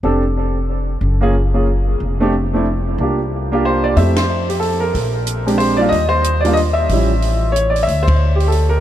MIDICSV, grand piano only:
0, 0, Header, 1, 2, 480
1, 0, Start_track
1, 0, Key_signature, -1, "major"
1, 0, Tempo, 326797
1, 48, Time_signature, 3, 2, 24, 8
1, 12928, End_track
2, 0, Start_track
2, 0, Title_t, "Grand piano"
2, 0, Program_c, 0, 0
2, 49, Note_on_c, 0, 60, 56
2, 53, Note_on_c, 0, 62, 56
2, 67, Note_on_c, 0, 69, 63
2, 70, Note_on_c, 0, 67, 50
2, 317, Note_off_c, 0, 60, 0
2, 319, Note_off_c, 0, 62, 0
2, 326, Note_off_c, 0, 69, 0
2, 327, Note_off_c, 0, 67, 0
2, 1773, Note_on_c, 0, 58, 62
2, 1785, Note_on_c, 0, 65, 62
2, 1790, Note_on_c, 0, 61, 57
2, 1800, Note_on_c, 0, 68, 75
2, 1947, Note_off_c, 0, 58, 0
2, 1954, Note_off_c, 0, 65, 0
2, 1956, Note_off_c, 0, 61, 0
2, 1961, Note_off_c, 0, 68, 0
2, 2258, Note_on_c, 0, 58, 51
2, 2266, Note_on_c, 0, 61, 49
2, 2266, Note_on_c, 0, 65, 51
2, 2277, Note_on_c, 0, 68, 55
2, 2430, Note_off_c, 0, 58, 0
2, 2435, Note_off_c, 0, 61, 0
2, 2435, Note_off_c, 0, 65, 0
2, 2440, Note_off_c, 0, 68, 0
2, 3237, Note_on_c, 0, 57, 68
2, 3247, Note_on_c, 0, 60, 63
2, 3258, Note_on_c, 0, 62, 68
2, 3265, Note_on_c, 0, 67, 70
2, 3401, Note_off_c, 0, 57, 0
2, 3406, Note_off_c, 0, 60, 0
2, 3412, Note_off_c, 0, 62, 0
2, 3415, Note_off_c, 0, 67, 0
2, 3722, Note_on_c, 0, 57, 58
2, 3736, Note_on_c, 0, 60, 55
2, 3744, Note_on_c, 0, 62, 58
2, 3764, Note_on_c, 0, 64, 64
2, 3884, Note_off_c, 0, 57, 0
2, 3891, Note_off_c, 0, 60, 0
2, 3895, Note_off_c, 0, 62, 0
2, 3905, Note_off_c, 0, 64, 0
2, 4408, Note_on_c, 0, 58, 51
2, 4417, Note_on_c, 0, 62, 49
2, 4432, Note_on_c, 0, 65, 49
2, 4442, Note_on_c, 0, 67, 58
2, 4661, Note_off_c, 0, 58, 0
2, 4665, Note_off_c, 0, 62, 0
2, 4673, Note_off_c, 0, 65, 0
2, 4678, Note_off_c, 0, 67, 0
2, 5166, Note_on_c, 0, 58, 62
2, 5174, Note_on_c, 0, 62, 57
2, 5186, Note_on_c, 0, 67, 75
2, 5189, Note_on_c, 0, 65, 60
2, 5365, Note_on_c, 0, 72, 86
2, 5635, Note_on_c, 0, 74, 79
2, 5658, Note_off_c, 0, 72, 0
2, 5788, Note_off_c, 0, 58, 0
2, 5792, Note_off_c, 0, 62, 0
2, 5798, Note_off_c, 0, 67, 0
2, 5800, Note_off_c, 0, 65, 0
2, 5825, Note_off_c, 0, 74, 0
2, 5829, Note_on_c, 0, 76, 83
2, 5831, Note_on_c, 0, 60, 44
2, 5833, Note_on_c, 0, 57, 55
2, 5848, Note_on_c, 0, 64, 50
2, 5848, Note_on_c, 0, 67, 54
2, 6092, Note_off_c, 0, 60, 0
2, 6094, Note_off_c, 0, 57, 0
2, 6101, Note_off_c, 0, 64, 0
2, 6101, Note_off_c, 0, 67, 0
2, 6119, Note_on_c, 0, 72, 85
2, 6130, Note_off_c, 0, 76, 0
2, 6564, Note_off_c, 0, 72, 0
2, 6595, Note_on_c, 0, 67, 67
2, 6669, Note_off_c, 0, 67, 0
2, 6752, Note_on_c, 0, 69, 83
2, 7052, Note_on_c, 0, 70, 76
2, 7072, Note_off_c, 0, 69, 0
2, 8028, Note_on_c, 0, 56, 61
2, 8040, Note_on_c, 0, 60, 55
2, 8043, Note_on_c, 0, 62, 53
2, 8048, Note_on_c, 0, 67, 62
2, 8148, Note_off_c, 0, 70, 0
2, 8193, Note_on_c, 0, 72, 90
2, 8471, Note_on_c, 0, 74, 85
2, 8481, Note_off_c, 0, 56, 0
2, 8487, Note_off_c, 0, 60, 0
2, 8489, Note_off_c, 0, 62, 0
2, 8491, Note_off_c, 0, 67, 0
2, 8506, Note_on_c, 0, 55, 70
2, 8511, Note_off_c, 0, 72, 0
2, 8520, Note_on_c, 0, 58, 62
2, 8525, Note_on_c, 0, 62, 58
2, 8534, Note_on_c, 0, 65, 77
2, 8647, Note_on_c, 0, 75, 96
2, 8675, Note_off_c, 0, 55, 0
2, 8682, Note_off_c, 0, 58, 0
2, 8682, Note_off_c, 0, 74, 0
2, 8684, Note_off_c, 0, 62, 0
2, 8689, Note_off_c, 0, 65, 0
2, 8939, Note_on_c, 0, 72, 102
2, 8978, Note_off_c, 0, 75, 0
2, 9409, Note_on_c, 0, 74, 80
2, 9460, Note_off_c, 0, 72, 0
2, 9468, Note_on_c, 0, 55, 66
2, 9478, Note_on_c, 0, 58, 58
2, 9486, Note_on_c, 0, 62, 59
2, 9499, Note_on_c, 0, 65, 70
2, 9595, Note_on_c, 0, 75, 92
2, 9609, Note_off_c, 0, 74, 0
2, 9635, Note_off_c, 0, 55, 0
2, 9640, Note_off_c, 0, 58, 0
2, 9644, Note_off_c, 0, 62, 0
2, 9651, Note_off_c, 0, 65, 0
2, 9668, Note_off_c, 0, 75, 0
2, 9891, Note_on_c, 0, 76, 83
2, 10157, Note_on_c, 0, 53, 52
2, 10176, Note_on_c, 0, 55, 53
2, 10182, Note_on_c, 0, 61, 52
2, 10186, Note_on_c, 0, 64, 58
2, 10411, Note_off_c, 0, 53, 0
2, 10421, Note_off_c, 0, 55, 0
2, 10424, Note_off_c, 0, 61, 0
2, 10426, Note_off_c, 0, 64, 0
2, 11047, Note_on_c, 0, 73, 85
2, 11097, Note_off_c, 0, 76, 0
2, 11308, Note_on_c, 0, 74, 74
2, 11342, Note_off_c, 0, 73, 0
2, 11499, Note_on_c, 0, 76, 91
2, 11515, Note_off_c, 0, 74, 0
2, 11789, Note_on_c, 0, 72, 83
2, 11840, Note_off_c, 0, 76, 0
2, 12273, Note_on_c, 0, 67, 70
2, 12321, Note_off_c, 0, 72, 0
2, 12451, Note_on_c, 0, 69, 75
2, 12498, Note_off_c, 0, 67, 0
2, 12770, Note_on_c, 0, 70, 77
2, 12795, Note_off_c, 0, 69, 0
2, 12928, Note_off_c, 0, 70, 0
2, 12928, End_track
0, 0, End_of_file